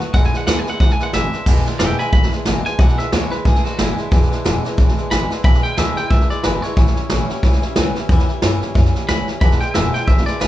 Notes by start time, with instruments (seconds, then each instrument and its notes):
0.00 steel-string acoustic guitar A3 B3 F#4, muted upright bass stroke, snare
0.14 upright bass E1, steel-string acoustic guitar E2 B2 E3 G#3 D4 E4, clean electric guitar F#5, kick, snare
0.24 clean electric guitar G#5, snare
0.33 steel-string acoustic guitar E3 G#3 D4 E4, clean electric guitar F#5, muted upright bass stroke, snare
0.47 upright bass D2, steel-string acoustic guitar E2 B2 E3 G#3 D4 E4, clean electric guitar F#5, snare, hi-hat pedal
0.59 clean electric guitar G#5
0.66 steel-string acoustic guitar E3 G#3 D4 E4, clean electric guitar F#5, muted upright bass stroke, snare
0.80 upright bass C#2, steel-string acoustic guitar E3 G#3 D4 E4, clean electric guitar F#5, kick, snare
0.90 clean electric guitar G#5, snare
0.99 steel-string acoustic guitar E3 G#3 D4 E4, clean electric guitar F#5, snare
1.13 upright bass G#1, steel-string acoustic guitar E2 B2 E3 G#3 D4 E4, clean electric guitar E5, snare, hi-hat pedal
1.33 steel-string acoustic guitar E3 G#3 D4 E4, muted upright bass stroke, snare
1.46 upright bass E1, steel-string acoustic guitar E2 B2 E3 G#3 D4 E4, kick, snare, crash
1.56 snare
1.65 steel-string acoustic guitar E3 G#3 D4 E4, muted upright bass stroke, snare
1.79 upright bass E1, steel-string acoustic guitar E2 B2 E3 G#3 D4 E4, clean electric guitar E5 G5, snare, hi-hat pedal
1.99 steel-string acoustic guitar E3 G#3 D4 E4, clean electric guitar G#5 B5, muted upright bass stroke, snare
2.12 upright bass G#1, steel-string acoustic guitar E3 G#3 D4 E4, clean electric guitar B5, kick, snare
2.23 snare
2.32 steel-string acoustic guitar E3 G#3 D4 E4, muted upright bass stroke, snare
2.45 upright bass G#1, steel-string acoustic guitar E2 B2 E3 G#3 D4 E4, snare, hi-hat pedal
2.65 steel-string acoustic guitar E3 G#3 D4 E4, clean electric guitar G#5, muted upright bass stroke, snare
2.79 upright bass B1, steel-string acoustic guitar E2 B2 E3 G#3 D4 E4, clean electric guitar F#5, kick, snare
2.88 snare
2.98 steel-string acoustic guitar E3 G#3 D4 E4, clean electric guitar E5, muted upright bass stroke, snare
3.12 upright bass D2, steel-string acoustic guitar E2 B2 E3 G#3 D4 E4, clean electric guitar C#5, snare, hi-hat pedal
3.31 steel-string acoustic guitar E3 G#3 D4 E4, clean electric guitar B4, muted upright bass stroke, snare
3.45 upright bass C#2, steel-string acoustic guitar E3 G#3 D4 E4, clean electric guitar G#4, kick, snare
3.55 snare
3.64 steel-string acoustic guitar E3 G#3 D4 E4, clean electric guitar F#4, muted upright bass stroke, snare
3.78 upright bass G#1, steel-string acoustic guitar E2 B2 E3 G#3 D4 E4, clean electric guitar E4, snare, hi-hat pedal
3.97 steel-string acoustic guitar E3 G#3 D4 E4, muted upright bass stroke, snare
4.11 upright bass E1, steel-string acoustic guitar E2 B2 E3 G#3 D4 E4, kick, snare
4.22 snare
4.30 steel-string acoustic guitar E3 G#3 D4 E4, muted upright bass stroke, snare
4.44 upright bass E1, steel-string acoustic guitar E2 B2 E3 G#3 D4 E4, snare, hi-hat pedal
4.64 steel-string acoustic guitar E3 G#3 D4 E4, snare
4.77 upright bass G#1, steel-string acoustic guitar E3 G#3 D4 E4, kick, snare
4.88 snare
4.96 steel-string acoustic guitar E3 G#3 D4 E4, muted upright bass stroke, snare
5.11 upright bass G#1, steel-string acoustic guitar E2 B2 E3 G#3 D4 E4, clean electric guitar B5, snare, hi-hat pedal
5.30 steel-string acoustic guitar E3 G#3 D4 E4, muted upright bass stroke, snare
5.44 upright bass B1, steel-string acoustic guitar E2 B2 E3 G#3 D4 E4, clean electric guitar B5, kick, snare
5.54 snare
5.62 steel-string acoustic guitar E3 G#3 D4 E4, clean electric guitar G5, snare
5.77 upright bass D2, steel-string acoustic guitar E2 B2 E3 G#3 D4 E4, clean electric guitar E5, snare, hi-hat pedal
5.96 steel-string acoustic guitar E3 G#3 D4 E4, clean electric guitar G5, muted upright bass stroke, snare
6.10 upright bass C#2, steel-string acoustic guitar E3 G#3 D4 E4, clean electric guitar E5, kick, snare
6.21 snare
6.29 steel-string acoustic guitar E3 G#3 D4 E4, clean electric guitar D5, muted upright bass stroke, snare
6.43 upright bass G#1, steel-string acoustic guitar E2 B2 E3 G#3 D4 E4, clean electric guitar B4, snare, hi-hat pedal
6.62 steel-string acoustic guitar E3 G#3 D4 E4, clean electric guitar C#5, muted upright bass stroke, snare
6.76 upright bass A1, steel-string acoustic guitar A2 E3 G3 C#4 E4, kick, snare
6.87 snare
6.96 steel-string acoustic guitar G3 C#4 E4, muted upright bass stroke, snare
7.10 upright bass A1, steel-string acoustic guitar A2 E3 G3 C#4 E4, snare, hi-hat pedal
7.29 steel-string acoustic guitar G3 C#4 E4, muted upright bass stroke, snare
7.43 upright bass C#2, steel-string acoustic guitar E3 G3 C#4 E4, kick, snare
7.53 snare
7.62 steel-string acoustic guitar G3 C#4 E4, muted upright bass stroke, snare
7.76 upright bass C#2, steel-string acoustic guitar A2 E3 G3 C#4 E4, snare, hi-hat pedal
7.95 steel-string acoustic guitar G3 C#4 E4, muted upright bass stroke, snare
8.09 upright bass E2, steel-string acoustic guitar A2 E3 G3 C#4 E4, kick, snare
8.19 snare
8.29 steel-string acoustic guitar G3 C#4 E4, muted upright bass stroke, snare
8.42 upright bass G2, steel-string acoustic guitar A2 E3 G3 C#4 E4, snare, hi-hat pedal
8.61 steel-string acoustic guitar G3 C#4 E4, muted upright bass stroke, snare
8.74 upright bass F#2, steel-string acoustic guitar E3 G3 C#4 E4, kick, snare
8.85 snare
8.94 steel-string acoustic guitar G3 C#4 E4, muted upright bass stroke, snare
9.08 upright bass C#2, steel-string acoustic guitar A2 E3 G3 C#4 E4, clean electric guitar B5, snare, hi-hat pedal
9.27 steel-string acoustic guitar G3 C#4 E4, muted upright bass stroke, snare
9.41 upright bass E1, steel-string acoustic guitar E2 B2 E3 G#3 D4 E4, clean electric guitar B5, kick, snare
9.51 snare
9.61 steel-string acoustic guitar E3 G#3 D4 E4, clean electric guitar G5, muted upright bass stroke, snare
9.74 upright bass E1, steel-string acoustic guitar E2 B2 E3 G#3 D4 E4, clean electric guitar E5, snare, hi-hat pedal
9.93 steel-string acoustic guitar E3 G#3 D4 E4, clean electric guitar G5, muted upright bass stroke, snare
10.06 upright bass G#1, steel-string acoustic guitar E3 G#3 D4 E4, clean electric guitar E5, kick, snare
10.18 snare
10.26 steel-string acoustic guitar E3 G#3 D4 E4, clean electric guitar D5, muted upright bass stroke, snare
10.40 upright bass G#1, steel-string acoustic guitar E2 B2 E3 G#3 D4 E4, clean electric guitar B4, snare, hi-hat pedal